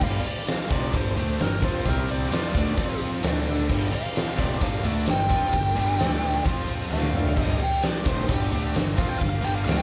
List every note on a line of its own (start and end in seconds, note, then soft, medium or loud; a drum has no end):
0.00 0.23 G1 loud
0.00 0.24 G2 medium
0.00 0.24 D3 medium
0.00 0.24 G3 medium
0.00 0.87 D4 medium
0.00 0.87 G4 medium
0.00 0.87 A#4 medium
0.00 0.25 F5 medium
0.00 kick loud
0.00 crash loud
0.24 0.48 D5 medium
0.24 muted fingered electric bass stroke soft
0.24 muted overdriven electric guitar stroke medium
0.24 ride medium
0.38 snare soft
0.47 0.70 F5 medium
0.47 snare loud
0.47 ride loud
0.69 0.92 F1 medium
0.69 0.92 F2 medium
0.69 0.92 C3 medium
0.69 0.93 F3 medium
0.69 0.93 D5 medium
0.69 kick loud
0.69 ride medium
0.93 1.15 G1 medium
0.93 1.16 G2 medium
0.93 1.15 D3 medium
0.93 1.16 G3 medium
0.93 1.18 C5 medium
0.93 kick loud
0.93 ride medium
1.16 1.38 D2 medium
1.16 1.39 D3 medium
1.16 1.39 A3 loud
1.16 1.39 D4 loud
1.16 1.41 C5 medium
1.16 ride medium
1.39 1.61 G1 medium
1.39 1.58 G2 medium
1.39 1.58 D3 medium
1.39 1.63 A#4 medium
1.39 snare loud
1.39 ride medium
1.61 1.84 F2 loud
1.61 1.85 F3 medium
1.61 1.85 C4 medium
1.61 1.83 D4 medium
1.61 1.86 F4 medium
1.61 1.84 G4 medium
1.61 1.85 A#4 medium
1.61 1.86 C5 medium
1.61 kick loud
1.61 ride medium
1.85 2.29 C2 medium
1.85 2.31 C3 medium
1.85 2.31 G3 loud
1.85 2.31 C4 medium
1.85 2.33 C4 medium
1.85 2.33 G4 medium
1.85 2.33 C5 medium
1.85 kick loud
1.85 ride medium
1.90 2.10 A#4 medium
2.09 2.99 D5 loud
2.09 ride medium
2.22 snare soft
2.31 2.53 F2 loud
2.31 2.54 F3 medium
2.31 2.55 C4 loud
2.31 2.76 D4 medium
2.31 2.55 F4 loud
2.31 2.77 G4 medium
2.31 snare loud
2.31 ride loud
2.36 2.77 A#4 medium
2.55 2.76 D2 medium
2.55 2.77 D3 medium
2.55 2.77 A3 medium
2.55 2.78 D4 medium
2.55 kick loud
2.55 ride medium
2.77 3.20 F2 medium
2.77 3.22 F3 medium
2.77 3.23 C4 loud
2.77 3.21 C4 medium
2.77 3.23 F4 medium
2.77 3.22 F4 medium
2.77 3.22 C5 loud
2.77 kick medium
2.77 ride medium
3.02 ride medium
3.22 3.66 D2 medium
3.22 3.69 D3 medium
3.22 3.69 A3 medium
3.22 3.43 D4 loud
3.22 3.70 D4 loud
3.22 3.43 A4 medium
3.22 3.45 D5 loud
3.22 snare loud
3.22 ride medium
3.44 3.67 D4 medium
3.44 3.67 A4 medium
3.44 3.68 D5 medium
3.44 ride medium
3.68 3.91 G1 loud
3.68 3.91 G2 medium
3.68 3.92 D3 loud
3.68 3.93 G3 loud
3.68 4.55 G4 medium
3.68 4.55 A#4 medium
3.68 4.56 D5 loud
3.68 kick loud
3.68 crash medium
3.92 4.39 F5 loud
3.92 muted overdriven electric guitar stroke medium
3.92 muted fingered electric bass stroke soft
3.92 ride medium
4.06 snare soft
4.16 snare loud
4.16 ride loud
4.38 4.60 F1 loud
4.38 4.61 F2 medium
4.38 4.61 C3 medium
4.38 4.62 F3 loud
4.38 4.61 D5 medium
4.38 kick loud
4.38 ride medium
4.61 4.83 G1 medium
4.61 4.84 G2 medium
4.61 4.82 D3 loud
4.61 4.83 G3 loud
4.61 4.85 F5 medium
4.61 kick loud
4.61 ride medium
4.83 5.06 D2 loud
4.83 5.06 D3 medium
4.83 5.07 A3 loud
4.83 5.07 D4 loud
4.83 ride medium
4.87 5.08 D5 medium
5.06 5.29 G1 medium
5.06 5.26 G2 medium
5.06 5.26 D3 medium
5.06 6.43 G5 loud
5.06 snare loud
5.06 ride medium
5.29 5.52 F2 medium
5.29 5.52 F3 loud
5.29 5.52 C4 medium
5.29 5.53 F4 loud
5.29 5.53 G4 medium
5.29 5.53 A#4 medium
5.29 kick loud
5.29 ride medium
5.33 5.54 D5 medium
5.52 5.75 G1 medium
5.52 5.72 G2 medium
5.52 5.72 D3 medium
5.52 6.00 G4 medium
5.52 6.00 A#4 medium
5.52 kick medium
5.52 ride medium
5.57 6.01 D5 medium
5.75 5.98 G1 medium
5.75 5.98 G2 medium
5.75 5.97 D3 medium
5.75 5.98 G3 loud
5.75 ride medium
5.98 6.42 D2 loud
5.98 6.44 D3 medium
5.98 6.45 A3 loud
5.98 6.45 D4 loud
5.98 6.43 D4 loud
5.98 6.43 A4 medium
5.98 snare loud
5.98 ride medium
6.02 6.44 D5 loud
6.22 ride medium
6.45 6.88 F2 medium
6.45 6.89 F3 medium
6.45 6.90 C4 medium
6.45 6.91 F4 loud
6.45 kick loud
6.45 ride loud
6.49 6.90 C4 medium
6.49 6.91 F4 medium
6.49 6.91 C5 medium
6.67 ride medium
6.90 7.34 D2 medium
6.90 7.35 D3 loud
6.90 7.36 A3 loud
6.90 7.37 D4 loud
6.90 7.14 D4 medium
6.90 7.14 A4 medium
6.90 7.14 D5 medium
6.90 7.41 F5 loud
6.90 snare medium
7.03 high tom medium
7.13 mid tom medium
7.18 7.38 D4 medium
7.18 7.38 A4 medium
7.18 7.39 D5 medium
7.25 floor tom medium
7.36 7.59 G1 medium
7.36 7.58 G2 medium
7.36 7.59 D3 medium
7.36 7.60 G3 loud
7.36 kick loud
7.36 crash loud
7.41 8.26 G4 medium
7.41 8.26 A#4 medium
7.41 8.27 D5 medium
7.41 7.59 D#5 loud
7.59 muted overdriven electric guitar stroke medium
7.59 muted fingered electric bass stroke soft
7.59 ride medium
7.63 7.84 G5 loud
7.82 8.06 D5 medium
7.82 snare loud
7.82 ride loud
8.04 8.27 F1 medium
8.04 8.26 F2 medium
8.04 8.27 C3 medium
8.04 8.28 F3 medium
8.04 kick loud
8.04 ride medium
8.09 8.30 C5 medium
8.27 8.50 G1 medium
8.27 8.50 G2 medium
8.27 8.49 D3 loud
8.27 8.51 G3 loud
8.27 kick loud
8.27 ride loud
8.31 8.75 G4 loud
8.51 8.73 D2 loud
8.51 8.73 D3 medium
8.51 8.74 A3 medium
8.51 8.74 D4 loud
8.51 ride medium
8.74 8.97 G1 medium
8.74 8.93 G2 medium
8.74 8.93 D3 medium
8.74 snare loud
8.74 ride loud
8.94 9.19 F2 loud
8.94 9.19 F3 medium
8.94 9.20 C4 medium
8.94 9.20 F4 medium
8.94 9.16 G4 medium
8.94 9.17 A#4 medium
8.94 9.18 D5 medium
8.94 kick loud
8.98 9.09 F5 loud
8.98 ride medium
9.09 9.19 G5 medium
9.17 9.42 G1 medium
9.17 9.39 G2 medium
9.17 9.39 D3 medium
9.17 9.65 G4 medium
9.17 9.66 A#4 medium
9.17 9.64 D5 medium
9.17 9.28 F5 medium
9.21 kick medium
9.21 ride medium
9.29 9.44 F5 loud
9.41 9.65 G1 medium
9.41 9.65 G2 medium
9.41 9.63 D3 medium
9.41 9.65 G3 loud
9.41 9.55 G5 loud
9.41 ride medium
9.56 9.64 F5 medium
9.64 9.82 D2 loud
9.64 9.82 D3 medium
9.64 9.82 A3 medium
9.64 9.82 D4 medium
9.64 9.82 D4 loud
9.64 9.82 A4 medium
9.64 9.82 D5 medium
9.64 9.77 F5 medium
9.64 ride medium
9.69 snare loud
9.78 9.82 G5 medium